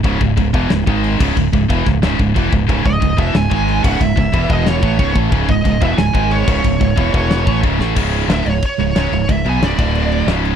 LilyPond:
<<
  \new Staff \with { instrumentName = "Lead electric guitar" } { \time 4/4 \key cis \minor \tempo 4 = 182 r1 | r1 | r8 dis''4 e''8 gis''4. fis''8 | e''4. dis''8 cis''4. r8 |
r8 dis''4 e''8 gis''4 cis''4~ | cis''2. r4 | r4 e''8 cis''8 cis''4 cis''4 | e''8 gis''8 d''2 r4 | }
  \new Staff \with { instrumentName = "Distorted electric guitar" } { \clef bass \time 4/4 \key cis \minor <cis, gis, cis>8 <cis, gis,>8 <cis, gis,>8 <e, b, e>8 <cis, gis,>8 <gis, dis gis>4 <cis, gis, cis>8 | <cis, gis,>8 <cis, gis,>8 <e, b, e>8 <cis, gis,>8 <cis, gis, cis>8 <cis, gis,>8 <e, b, e>8 <cis, gis,>8 | <cis, gis, cis>8 <cis, gis,>8 <cis, gis,>8 <e, b, e>8 <cis, gis,>8 <gis, dis gis>4 <cis, gis, cis>8 | <cis, gis,>8 <cis, gis,>8 <e, b, e>8 <e, b, e>4 <a, e a>8 <cis, gis, cis>8 <a, e a>8 |
<cis, gis, cis>8 <cis, gis,>8 <cis, gis,>8 <e, b, e>8 <cis, gis,>8 <gis, dis gis>4 <cis, gis, cis>8 | <cis, gis,>8 <cis, gis,>8 <e, b, e>8 <e, b, e>4 <a, e a>8 <cis, gis, cis>8 <a, e a>8 | <cis, gis, cis>4 <d, a, d>8 <cis, gis,>8 r8 <cis, gis,>8 <cis, gis, cis>8 <cis, gis,>8 | <cis, gis,>8 <b, fis b>8 <cis, gis, cis>8 <d, a, d>4. <cis, gis, cis>4 | }
  \new Staff \with { instrumentName = "Distorted electric guitar" } { \clef bass \time 4/4 \key cis \minor <cis, gis, cis>8 <cis, gis,>8 <cis, gis,>8 <e, b, e>8 <cis, gis,>8 <gis, dis gis>4 <cis, gis, cis>8 | <cis, gis,>8 <cis, gis,>8 <e, b, e>8 <cis, gis,>8 <cis, gis, cis>8 <cis, gis,>8 <e, b, e>8 <cis, gis,>8 | <cis, gis, cis>8 <cis, gis,>8 <cis, gis,>8 <e, b, e>8 <cis, gis,>8 <gis, dis gis>4 <cis, gis, cis>8 | <cis, gis,>8 <cis, gis,>8 <e, b, e>8 <e, b, e>4 <a, e a>8 <cis, gis, cis>8 <a, e a>8 |
<cis, gis, cis>8 <cis, gis,>8 <cis, gis,>8 <e, b, e>8 <cis, gis,>8 <gis, dis gis>4 <cis, gis, cis>8 | <cis, gis,>8 <cis, gis,>8 <e, b, e>8 <e, b, e>4 <a, e a>8 <cis, gis, cis>8 <a, e a>8 | <cis, gis, cis>4 <d, a, d>8 <cis, gis,>8 r8 <cis, gis,>8 <cis, gis, cis>8 <cis, gis,>8 | <cis, gis,>8 <b, fis b>8 <cis, gis, cis>8 <d, a, d>4. <cis, gis, cis>4 | }
  \new Staff \with { instrumentName = "Fingered electric bass" } { \clef bass \time 4/4 \key cis \minor cis,,8 cis,,8 cis,,8 e,,8 cis,,8 gis,,4 cis,,8 | cis,,8 cis,,8 e,,8 cis,,8 cis,,8 cis,,8 e,,8 cis,,8 | cis,,8 cis,,8 cis,,8 e,,8 cis,,8 gis,,4 cis,,8 | cis,,8 cis,,8 e,,8 e,,4 a,,8 cis,,8 a,,8 |
cis,,8 cis,,8 cis,,8 e,,8 cis,,8 gis,,4 cis,,8 | cis,,8 cis,,8 e,,8 e,,4 a,,8 cis,,8 a,,8 | cis,,4 d,,8 cis,,8 r8 cis,,8 cis,,8 cis,,8 | cis,,8 b,,8 cis,,8 d,,4. cis,,4 | }
  \new DrumStaff \with { instrumentName = "Drums" } \drummode { \time 4/4 <cymc bd>8 bd8 <cymc bd>8 bd8 <cymc sn>8 bd8 <cymc sn>8 <cymc bd>8 | <cymc bd>8 bd8 <cymc bd>8 <bd sn>8 <cymc sn>8 bd8 <cymc bd>8 bd8 | <cymc bd>8 bd8 <cymc bd>8 bd8 <cymc sn>8 bd8 <cymc sn>8 <cymc bd>8 | <cymc bd>8 bd8 <cymc bd>8 bd8 <cymc sn>8 bd8 <cymc bd>8 bd8 |
<cymc bd>8 bd8 <cymc bd>8 bd8 <cymc sn>8 bd8 <cymc sn>8 <cymc bd>8 | <cymc bd>8 bd8 <cymc bd>8 bd8 <cymc sn>8 bd8 <cymc bd>8 sn8 | <cymc bd>8 cymc8 <cymc sn>8 cymc8 <cymc bd>8 cymc8 <cymc sn>8 cymc8 | <cymc bd>8 cymc8 <cymc sn>8 <cymc bd>8 cymc8 cymc8 <cymc sn>8 cymc8 | }
>>